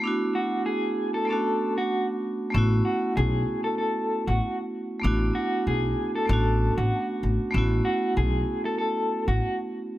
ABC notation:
X:1
M:4/4
L:1/16
Q:"Swing 16ths" 1/4=96
K:A
V:1 name="Clean electric guitar"
z2 F2 G3 A A3 F2 z3 | z2 F2 G3 A A3 F2 z3 | z2 F2 G3 A A3 F2 z3 | z2 F2 G3 A A3 F2 z3 |]
V:2 name="Vibraphone"
[A,B,DEF]8 [A,B,CDF]8 | [A,B,CEF]16 | [A,B,DEF]8 [A,B,CDF]8 | [A,B,CEF]16 |]
V:3 name="Upright bass" clef=bass
z16 | A,,,2 z2 B,,,2 z4 z A,,, z4 | A,,,2 z2 B,,,2 z2 A,,,3 A,,, z2 A,,, z | A,,,2 z2 B,,,2 z4 z A,,, z4 |]